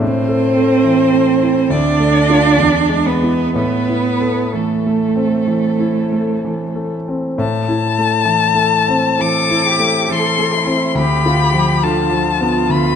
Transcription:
0.00 grand piano A2, cello C4, violin C5
0.28 grand piano A4
0.56 grand piano A3
0.84 grand piano E3
1.12 grand piano A3
1.42 grand piano E4
1.70 grand piano D2, cello D4, violin D5
1.99 grand piano A3
2.29 grand piano D4 F4
2.58 grand piano E2
2.89 grand piano G#3
3.06 cello B3, violin B4
3.22 grand piano B3 E4
3.55 grand piano A2, cello B3, violin B4
3.89 grand piano E4
4.20 grand piano A3
4.52 grand piano E3, cello A3, violin A4
4.86 grand piano A3
5.15 grand piano C4
5.48 grand piano E3
5.80 grand piano E4
6.12 grand piano A3
6.44 grand piano E3
6.75 grand piano A3
7.08 grand piano C4
7.38 grand piano A2, violin A5
7.68 grand piano E4
7.98 grand piano A3
8.25 grand piano E3
8.55 grand piano A3
8.88 grand piano C4
9.19 grand piano E3, cello A4, violin D6
9.50 grand piano E4
9.66 cello G4
9.79 grand piano A3
10.08 grand piano E3, cello A4, violin C6
10.38 grand piano A3
10.53 cello E4
10.66 grand piano C4
10.95 grand piano D2, cello G4, violin B5
11.26 grand piano F4
11.53 grand piano F3
11.83 grand piano D3, cello F4, violin A5
12.11 grand piano F3
12.27 cello F4
12.41 grand piano B3
12.69 grand piano D2, violin B5

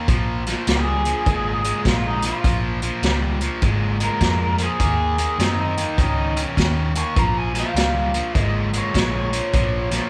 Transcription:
0.08 fingered electric bass A#1, overdriven electric guitar A#2 F3, kick, closed hi-hat
0.47 overdriven electric guitar A#2 F3, snare, closed hi-hat
0.67 fingered electric bass C#2, overdriven electric guitar A#2 G3 G#4, snare, closed hi-hat
1.05 overdriven electric guitar A#2 F3, closed hi-hat
1.26 fingered electric bass G#1, overdriven electric guitar A#2 G#3, kick, closed hi-hat
1.64 overdriven electric guitar A#2 G#3, closed hi-hat
1.85 fingered electric bass A#1, overdriven electric guitar A#2 G#3 F4, kick, snare, closed hi-hat
2.08 overdriven electric guitar D#4
2.22 overdriven electric guitar A#2 F3 F4, closed hi-hat
2.44 fingered electric bass A#1, overdriven electric guitar A#2 F3, kick, closed hi-hat
2.82 overdriven electric guitar A#2 F3, closed hi-hat
3.02 fingered electric bass C#2, overdriven electric guitar A#2 G3, snare, closed hi-hat
3.41 overdriven electric guitar A#2 F3, closed hi-hat
3.62 fingered electric bass G#1, overdriven electric guitar A#2 G#3, kick, closed hi-hat
4.00 overdriven electric guitar A#2 G#3, closed hi-hat
4.05 overdriven electric guitar A#4
4.21 fingered electric bass F2, overdriven electric guitar A#2 G#3, kick, snare, closed hi-hat
4.58 overdriven electric guitar A#2 F3, closed hi-hat
4.64 overdriven electric guitar G#4
4.80 fingered electric bass D#2, overdriven electric guitar D#3 A#3, kick, closed hi-hat
5.18 overdriven electric guitar D#3 A#3, closed hi-hat
5.38 fingered electric bass F#2, overdriven electric guitar D#3 C4 D#4, snare, closed hi-hat
5.61 overdriven electric guitar D#4
5.77 overdriven electric guitar D#3 A#3, closed hi-hat
5.98 fingered electric bass C#2, overdriven electric guitar D#3 C#4 D#4, kick, closed hi-hat
6.36 overdriven electric guitar D#3 C#4, closed hi-hat
6.57 fingered electric bass D#2, overdriven electric guitar D#3 C#4, kick, snare, closed hi-hat
6.95 overdriven electric guitar D#3 A#3 C#6, closed hi-hat
7.16 fingered electric bass A#1, overdriven electric guitar A#2 F3 A#5, kick, closed hi-hat
7.38 overdriven electric guitar G#5
7.54 overdriven electric guitar A#2 F3, snare, closed hi-hat
7.59 overdriven electric guitar F5
7.74 fingered electric bass C#2, overdriven electric guitar A#2 G3, snare, closed hi-hat
8.14 overdriven electric guitar A#2 F3, closed hi-hat
8.35 fingered electric bass G#1, overdriven electric guitar A#2 G#3 D#5, kick, closed hi-hat
8.73 overdriven electric guitar A#2 G#3, closed hi-hat
8.78 overdriven electric guitar C#5
8.94 fingered electric bass A#1, overdriven electric guitar A#2 G#3, kick, snare, closed hi-hat
8.98 overdriven electric guitar C#5
9.18 overdriven electric guitar C#5
9.33 overdriven electric guitar A#2 F3, closed hi-hat
9.53 fingered electric bass A#1, overdriven electric guitar A#2 F3, kick, closed hi-hat
9.91 overdriven electric guitar A#2 F3, snare, closed hi-hat

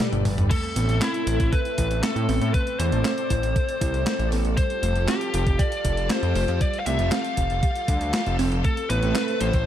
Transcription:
Already playing: string machine G3 G4 A4 B4 D5
0.00 snare, closed hi-hat, high tom
0.12 analog synth bass G1, closed hi-hat, high tom
0.25 analog synth bass G1, open hi-hat, mid tom
0.38 analog synth bass G1, closed hi-hat, mid tom
0.50 string machine A3 C4 A4 E5, synth arpeggio sound A3, lead electric guitar A4, kick, closed hi-hat, crash
0.63 closed hi-hat
0.76 analog synth bass A1, synth arpeggio sound B3, closed hi-hat
0.89 analog synth bass A1, closed hi-hat
1.02 synth arpeggio sound C4, lead electric guitar E4, snare, clap, closed hi-hat
1.14 closed hi-hat
1.27 analog synth bass A1, synth arpeggio sound E4, closed hi-hat
1.40 analog synth bass A1, kick, closed hi-hat
1.52 synth arpeggio sound A4, lead electric guitar B4, kick, closed hi-hat
1.65 closed hi-hat
1.78 analog synth bass A1, synth arpeggio sound E4, kick, closed hi-hat
1.90 analog synth bass A1, closed hi-hat
2.03 synth arpeggio sound C4, lead electric guitar A4, snare, clap, closed hi-hat
2.16 analog synth bass A2, closed hi-hat
2.29 analog synth bass A1, synth arpeggio sound B3, open hi-hat
2.42 analog synth bass A2, closed hi-hat
2.54 synth arpeggio sound A3, lead electric guitar B4, string machine D5, kick, closed hi-hat
2.67 closed hi-hat
2.79 analog synth bass E2, synth arpeggio sound B3, lead electric guitar C5, closed hi-hat
2.92 analog synth bass A1, closed hi-hat
3.05 synth arpeggio sound C4, lead electric guitar C5, snare, clap, closed hi-hat
3.18 closed hi-hat
3.30 analog synth bass A1, synth arpeggio sound E4, kick, closed hi-hat
3.43 analog synth bass A1, closed hi-hat
3.56 synth arpeggio sound A4, kick, closed hi-hat
3.69 closed hi-hat
3.81 analog synth bass C2, synth arpeggio sound E4, kick, closed hi-hat
3.94 analog synth bass C2, closed hi-hat
4.07 synth arpeggio sound C4, snare, clap, closed hi-hat
4.19 analog synth bass A1, closed hi-hat
4.32 analog synth bass A1, synth arpeggio sound B3, open hi-hat
4.45 analog synth bass A1, closed hi-hat
4.57 synth arpeggio sound G3, string machine F4 G4, lead electric guitar C5, kick, closed hi-hat
4.70 closed hi-hat
4.83 analog synth bass F1, synth arpeggio sound A3, closed hi-hat
4.96 analog synth bass F1, closed hi-hat
5.08 synth arpeggio sound C4, lead electric guitar G4, snare, clap, closed hi-hat
5.21 closed hi-hat
5.34 analog synth bass F1, synth arpeggio sound F4, closed hi-hat
5.47 analog synth bass F1, kick, closed hi-hat
5.59 synth arpeggio sound G4, lead electric guitar D5, kick, closed hi-hat
5.72 closed hi-hat
5.85 analog synth bass F1, synth arpeggio sound F4, kick, closed hi-hat
5.97 analog synth bass F1, closed hi-hat
6.10 synth arpeggio sound C4, lead electric guitar C5, snare, clap, closed hi-hat
6.23 analog synth bass F2, closed hi-hat
6.35 analog synth bass F1, synth arpeggio sound A3, open hi-hat
6.48 analog synth bass F2, closed hi-hat
6.61 synth arpeggio sound G3, lead electric guitar D5, kick, closed hi-hat
6.74 closed hi-hat
6.80 lead electric guitar F5
6.86 analog synth bass C2, synth arpeggio sound A3, lead electric guitar E5, closed hi-hat
6.99 analog synth bass F1, closed hi-hat
7.12 synth arpeggio sound C4, lead electric guitar F5, snare, clap, closed hi-hat
7.25 closed hi-hat
7.37 analog synth bass F1, synth arpeggio sound F4, kick, closed hi-hat
7.50 analog synth bass F1, closed hi-hat
7.63 synth arpeggio sound G4, kick, closed hi-hat
7.76 closed hi-hat
7.88 analog synth bass D2, synth arpeggio sound G3, kick, closed hi-hat
8.01 analog synth bass D2, closed hi-hat
8.14 synth arpeggio sound F4, snare, clap, closed hi-hat
8.26 analog synth bass F1, closed hi-hat
8.39 analog synth bass F1, synth arpeggio sound C4, open hi-hat
8.52 analog synth bass F1, closed hi-hat
8.64 synth arpeggio sound A3, string machine A3 C4 B4 E5, lead electric guitar A4, kick, closed hi-hat
8.77 closed hi-hat
8.90 analog synth bass A1, synth arpeggio sound B3, lead electric guitar B4, closed hi-hat
9.03 analog synth bass A1, closed hi-hat
9.15 synth arpeggio sound C4, snare, clap, closed hi-hat
9.28 closed hi-hat
9.41 analog synth bass A1, synth arpeggio sound E4, lead electric guitar C5, closed hi-hat
9.53 analog synth bass A1, kick, closed hi-hat

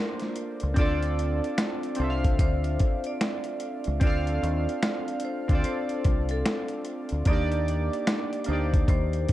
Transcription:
Already playing: synth keys A#3 D4 F4 A#4 C5, vibraphone A#4
0.20 snare, closed hi-hat
0.36 closed hi-hat
0.60 fingered electric bass C#2, closed hi-hat
0.74 fingered electric bass D2, synth keys C4 D4 F4, kick, closed hi-hat
0.78 synth keys A4 D5, vibraphone D5
1.03 closed hi-hat
1.19 closed hi-hat
1.44 closed hi-hat
1.58 finger snap, snare, closed hi-hat
1.83 closed hi-hat
1.95 synth keys C4 D4, closed hi-hat
2.00 fingered electric bass C2, synth keys F4 A4, vibraphone C5
2.04 synth keys E5
2.10 synth keys F5
2.24 kick, closed hi-hat
2.39 fingered electric bass D2, vibraphone C5, kick, closed hi-hat
2.64 closed hi-hat
2.79 kick, closed hi-hat
3.04 vibraphone D5, closed hi-hat
3.21 finger snap, snare, closed hi-hat
3.44 closed hi-hat
3.60 closed hi-hat
3.84 fingered electric bass C#2, closed hi-hat
4.00 fingered electric bass D2, synth keys C4 D4 F4, vibraphone D5, kick, closed hi-hat
4.05 synth keys A4 F5
4.27 closed hi-hat
4.43 fingered electric bass D#2, closed hi-hat
4.69 closed hi-hat
4.83 finger snap, snare, closed hi-hat
5.08 closed hi-hat
5.20 closed hi-hat
5.25 vibraphone C5
5.48 fingered electric bass D2, synth keys C4 D4 F4, kick, closed hi-hat
5.53 synth keys A4 D5
5.64 vibraphone C5, closed hi-hat
5.89 closed hi-hat
6.04 fingered electric bass C2, kick, closed hi-hat
6.29 vibraphone A4, closed hi-hat
6.46 finger snap, snare, closed hi-hat
6.68 closed hi-hat
6.85 closed hi-hat
7.09 fingered electric bass D2, closed hi-hat
7.25 fingered electric bass D#2, synth keys A#3 D4 D#4, vibraphone D5, kick, closed hi-hat
7.31 synth keys G4 D5
7.52 closed hi-hat
7.68 closed hi-hat
7.93 closed hi-hat
8.07 finger snap, snare, closed hi-hat
8.33 closed hi-hat
8.44 fingered electric bass D2, synth keys A#3 D4, closed hi-hat
8.49 synth keys D#4 G4, vibraphone C5
8.53 synth keys D5
8.74 kick, closed hi-hat
8.88 fingered electric bass D#2, vibraphone C5, kick, closed hi-hat
9.13 closed hi-hat
9.29 kick, closed hi-hat

